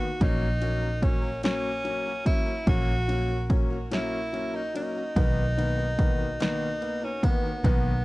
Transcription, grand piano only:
0.21 F#3 A#3 C#4
0.62 F#3 A#3 C#4
1.03 F#3 A#3 C#4
1.44 F#3 A#3 C#4
1.85 F#3 A#3 C#4
2.25 F#3 A#3 C#4
2.67 F#3 A#3 C#4
3.08 F#3 A#3 C#4
3.50 F#3 A#3 C#4
3.91 F#3 A#3 C#4
4.33 F#3 A#3 C#4
4.74 F#3 A#3 C#4
5.16 D#3 A#3 B3
5.57 D#3 A#3 B3
6.00 D#3 A#3 B3
6.40 D#3 A#3 B3
6.81 A#3 B3
7.23 D#3 A#3 B3
7.65 D#3 A#3 B3

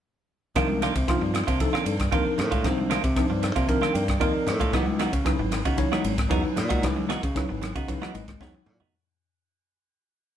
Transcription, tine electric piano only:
0.55 F3 C4 D4 D#4 A#4
1.07 F3 C4 D4 D#4 F4
1.60 F3 C4 D4 D#4 A4
2.12 F3 C4 D4 D#4 A#4
2.64 F3 C4 D4 D#4 C5
3.16 F3 C4 D4 D#4 C5
3.67 F3 C4 D4 D#4 A#4
3.94 G5
4.19 F3 C4 D#4 A#4 D5 D#5
4.72 F#3 C#4 D#4 E4 B4
5.24 F#3 C#4 D#4 E4 B4
5.77 F#3 C#4 D#4 E4 C#5
6.29 F#3 C#4 D#4 E4 B4
6.82 F#3 C#4 D#4 E4 B4
7.35 F#3 C#4 D#4 E4 B4
7.88 F#3 C#4 D#4 E4 B4
8.14 D#5
8.40 F#3 C#4 D#4 E4 C#5 F#5

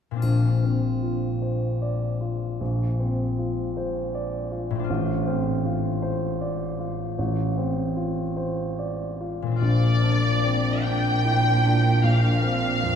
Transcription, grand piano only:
0.23 A#1
0.64 C4
1.03 F4
1.42 C5
1.82 D5
2.21 F4
2.61 A#1
3.00 C4
3.38 F4
3.77 C5
4.15 D5
4.52 F4
4.90 A1
5.27 C4
5.65 F4
6.02 C5
6.41 D5
6.79 F4
7.19 A1
7.57 C4
7.96 F4
8.37 C5
8.79 D5
9.20 F4
9.62 A#1
10.03 D4
10.44 C4
10.85 D4
11.25 E4
11.65 D4
12.04 A#1
12.43 C4
12.83 F2

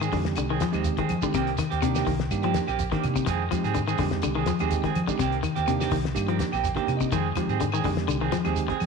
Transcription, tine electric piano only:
0.12 G#3 C4 D#4 G4
0.72 G#3 C4 D#4 G4
1.22 G#3 C4 D#4 G4
1.83 A#3 D4 D#4 G4
2.31 A#3 D4 D#4 G4
2.92 A#3 D4 D#4 G4
3.52 G#3 C4 D#4 G4
4.01 G#3 C4 D#4 G4
4.60 G#3 C4 D#4 G4
5.08 G#3 C4 D#4 G4
5.68 A#3 D4 D#4 G4
6.15 A#3 D4 D#4 G4
6.64 G5
6.75 A#3 D4 D#4 G4
6.97 D#5
7.37 G#3 C4 D#4 G4
7.84 G#3 C4 D#4 G4
8.44 G#3 C4 D#4 G4

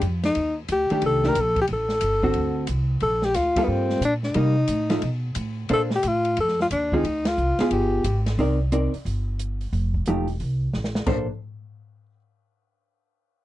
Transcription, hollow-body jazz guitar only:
0.91 D#3 A3 D4 G4
1.24 D#3 A3 D4 G4
2.23 D3 C4 F#4
3.57 G3 A#3 F4 A4
4.35 G3 A#3 D#4
4.90 F3 A3 D#4
5.70 A#3 D4 A4 C5
6.93 D3 C4 F4 G#4
7.60 B3 F4 G#4
8.39 C4 D#4 A#4 D5
8.72 C4 D#4 A#4 D5
10.08 F3 A3 D#4 G4
11.07 A#3 D4 A4 C5

